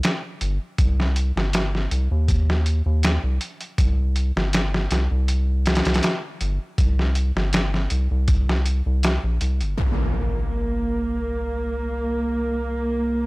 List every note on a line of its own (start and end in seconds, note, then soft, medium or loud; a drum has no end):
0.03 snare loud
0.03 closed hi-hat medium
0.41 0.58 G1 loud
0.41 closed hi-hat medium
0.78 1.32 C2 medium
0.78 kick loud
0.78 closed hi-hat medium
1.00 snare soft
1.16 closed hi-hat medium
1.36 1.87 G1 medium
1.36 snare medium
1.53 snare loud
1.53 closed hi-hat medium
1.75 snare soft
1.91 2.08 C2 medium
1.91 closed hi-hat medium
2.11 2.82 D#2 loud
2.28 kick loud
2.28 closed hi-hat medium
2.50 snare medium
2.66 closed hi-hat medium
2.86 3.18 D#2 loud
3.03 snare loud
3.03 closed hi-hat medium
3.24 3.39 C2 medium
3.41 closed hi-hat medium
3.61 closed hi-hat soft
3.78 4.32 C2 medium
3.78 kick loud
3.78 closed hi-hat medium
4.16 closed hi-hat medium
4.36 4.88 G1 medium
4.36 snare medium
4.53 snare loud
4.53 closed hi-hat medium
4.74 snare medium
4.91 5.08 C2 medium
4.91 snare medium
4.91 closed hi-hat medium
5.11 5.82 C2 loud
5.28 closed hi-hat medium
5.66 snare medium
5.66 closed hi-hat medium
5.75 snare medium
5.75 closed hi-hat medium
5.85 6.01 C2 medium
5.85 snare medium
5.85 closed hi-hat medium
5.94 snare medium
5.94 closed hi-hat medium
6.03 snare loud
6.03 closed hi-hat medium
6.41 6.58 G1 loud
6.41 closed hi-hat medium
6.78 7.32 C2 loud
6.78 kick loud
6.78 closed hi-hat medium
6.99 snare soft
7.15 closed hi-hat medium
7.36 7.87 G1 medium
7.36 snare soft
7.53 snare loud
7.53 closed hi-hat medium
7.74 snare soft
7.90 8.08 C2 medium
7.90 closed hi-hat medium
8.11 8.82 C2 loud
8.28 kick loud
8.28 closed hi-hat medium
8.49 snare medium
8.66 closed hi-hat medium
8.86 9.19 C2 loud
9.03 snare loud
9.03 closed hi-hat medium
9.24 9.39 A#1 medium
9.41 9.63 C2 medium
9.41 closed hi-hat medium
9.61 9.76 G1 medium
9.61 closed hi-hat soft
9.78 13.26 C2 medium
9.78 13.26 A#3 medium
9.78 impact medium